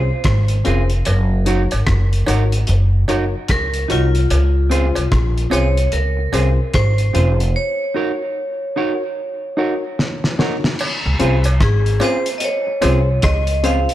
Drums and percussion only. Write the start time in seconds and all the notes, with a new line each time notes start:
0.24 kick, cross-stick, closed hi-hat
0.48 closed hi-hat
0.65 closed hi-hat
0.90 closed hi-hat
1.05 closed hi-hat, cowbell
1.46 closed hi-hat
1.71 closed hi-hat, cowbell
1.87 kick, cross-stick, closed hi-hat
2.13 closed hi-hat
2.27 closed hi-hat, cowbell
2.52 closed hi-hat
2.67 closed hi-hat
3.08 closed hi-hat, cowbell
3.48 kick, cross-stick, closed hi-hat
3.74 closed hi-hat
3.90 closed hi-hat
4.15 closed hi-hat
4.30 closed hi-hat, cowbell
4.71 closed hi-hat
4.95 closed hi-hat, cowbell
5.12 kick, cross-stick, closed hi-hat
5.38 closed hi-hat
5.51 closed hi-hat, cowbell
5.77 closed hi-hat
5.92 closed hi-hat
6.33 closed hi-hat, cowbell
6.74 kick, cross-stick, closed hi-hat
6.98 closed hi-hat
7.15 closed hi-hat
7.40 closed hi-hat
9.99 snare
10.24 snare
10.39 snare
10.64 snare
10.79 crash, cowbell
11.20 closed hi-hat
11.44 closed hi-hat, cowbell
11.60 kick, cross-stick, closed hi-hat
11.86 closed hi-hat
12.00 closed hi-hat, cowbell
12.26 closed hi-hat
12.40 closed hi-hat
12.82 closed hi-hat, cowbell
13.22 kick, cross-stick, closed hi-hat
13.47 closed hi-hat
13.64 closed hi-hat
13.89 closed hi-hat